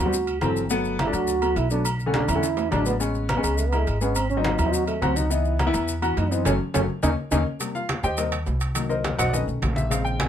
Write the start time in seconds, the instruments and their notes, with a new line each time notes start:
0.00 upright bass D2, trombone F#4
0.05 grand piano G3 B3 C4
0.13 high conga, maracas
0.27 high conga, low agogo, maracas
0.41 upright bass G1, grand piano E3 F#3 C4, trombone A4, high conga, low agogo, maracas
0.57 maracas
0.70 grand piano F#3 A3 B3, high conga, maracas
0.85 high conga, maracas
0.99 trombone E4, high conga, low agogo, maracas
1.06 grand piano F#3 A3 D4
1.13 upright bass D2, trombone F#4, low agogo, maracas
1.28 high conga, maracas
1.42 grand piano F#3 A3 B3, high conga, low agogo, maracas
1.56 upright bass B1, trombone E4, high conga, low agogo, maracas
1.70 grand piano F#3 A3 B3, trombone D4, maracas
1.85 high conga, low agogo, maracas
2.00 high conga, maracas
2.06 grand piano D3 A3 C#4
2.14 trombone D4, high conga, low agogo, maracas
2.28 upright bass E2, trombone E4, high conga, low conga, low agogo, maracas
2.35 grand piano D3 A3 C#4
2.43 high conga, high timbale, maracas
2.57 high conga, low timbale, low agogo, maracas
2.71 upright bass A1, grand piano F#3 G#3 D4, trombone D4, high conga, low timbale, low agogo, maracas
2.86 trombone B3, low timbale, maracas
3.00 grand piano G#3 B3 C#4, high conga, maracas
3.14 high conga, maracas
3.29 trombone B3, high conga, low agogo, maracas
3.37 grand piano G#3 B3 C#4
3.44 upright bass C#2, trombone G#3, low agogo, maracas
3.58 trombone A3, high conga, maracas
3.68 trombone B3
3.72 grand piano G#3 B3 E4, high conga, low agogo, maracas
3.78 trombone A3
3.87 upright bass G#1, trombone G#3, high conga, low agogo, maracas
4.01 grand piano G#3 B3 C#4, trombone B3, maracas
4.15 trombone C4, high conga, low agogo, maracas
4.30 trombone C#4, high conga, maracas
4.37 grand piano F#3 C4 D#4
4.44 trombone D#4, high conga, low agogo, maracas
4.58 upright bass D#2, trombone E4, high conga, low conga, low agogo, maracas
4.65 grand piano F#3 C4 D#4
4.73 trombone F#4, high conga, maracas
4.87 trombone A3, high conga, low agogo, maracas
5.01 upright bass C#2, grand piano F#3 C4 F#4, trombone C4, high conga, low timbale, low agogo, maracas
5.16 trombone D#4, high conga, maracas
5.30 grand piano E3 B3 D#4, trombone E4, high conga, maracas
5.45 high conga, maracas
5.59 high conga, low agogo, maracas
5.66 grand piano E3 B3 E4
5.74 upright bass E2, low agogo, maracas
5.88 high conga, maracas
6.02 grand piano E3 B3 F#4, high conga, low agogo, maracas
6.17 upright bass F#2, trombone D#4, high conga, low timbale, low agogo, maracas
6.31 grand piano E3 B3 D#4, trombone C4, maracas
6.45 upright bass F#1, grand piano F#3 A3 C#4, trombone C#4, high conga, high timbale, maracas
6.74 upright bass F#1, grand piano F#3 A3 C#4, trombone C#4, high conga, high timbale, maracas
7.03 upright bass D#2, grand piano A#3 C#4 D#4, trombone D#4, high conga, high timbale, maracas
7.31 upright bass D#2, grand piano A#3 C#4 D#4, trombone D#4, high conga, high timbale, maracas
7.60 grand piano C3 G3 A#3, high conga, high timbale, maracas
7.75 grand piano F4 F5, high conga, maracas
7.89 high conga, high timbale, maracas
8.03 upright bass D#2, grand piano G4 C5 D#5 G5, maracas
8.17 grand piano C3 G3 A#3 D#4 A#4 C5 D#5, high conga, high timbale, maracas
8.32 high conga, high timbale, maracas
8.46 upright bass C2, high conga, low timbale, maracas
8.61 high timbale, maracas
8.75 grand piano D#3 F#3 A#3, high conga, high timbale, maracas
8.89 grand piano D#4 A#4 C5 D#5, high conga, maracas
9.04 high conga, high timbale, maracas
9.19 upright bass B1, grand piano F#4 C5 D#5 F#5, high conga, low conga, high timbale, maracas
9.29 grand piano D#3 D5
9.33 grand piano A3 C#4 D#4 A4 B4 D#5, high conga, low conga, maracas
9.48 upright bass B1, high conga, maracas
9.62 upright bass A#1, high conga, high timbale, low timbale, maracas
9.76 grand piano E5, high conga, maracas
9.90 grand piano C#3 G#3 C4 F5, high conga, high timbale, maracas
10.05 grand piano G5, high conga, maracas
10.20 grand piano G#5, high conga, high timbale, maracas